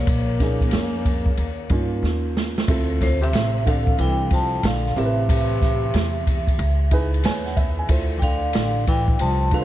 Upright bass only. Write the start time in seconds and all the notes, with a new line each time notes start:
0.07 A#1
0.73 F2
1.38 D#2
1.70 G2
2.03 D#2
2.68 D2
3.33 A1
3.98 C2
4.63 A#1
4.96 A1
5.94 E2
6.59 C#2
7.24 D#2
7.89 D2
8.54 A1
9.20 C2